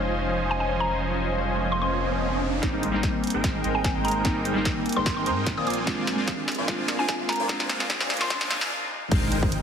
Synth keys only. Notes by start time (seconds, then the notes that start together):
Already playing: G#3 D#4 F4 C5
2.62 G3 A#3 C4 D#4
2.92 G3 A#3 C4
2.96 D#4
4.24 G3 A#3 C4 D#4
4.54 G3 A#3 C4 D#4
5.86 G#3 C4 D4 F4
6.16 G#3 C4 D4
6.20 F4
6.67 G#3 C4 D4 F4
6.97 G#3 C4 D4
7.01 F4
7.48 G#3 C4 D4 F4
7.78 G#3 C4 D4 F4
7.89 G#3 C4 D4 F4
8.19 G#3 C4 D4 F4
8.29 G#3 C4 D4 F4
8.50 G#3 C4 D4 F4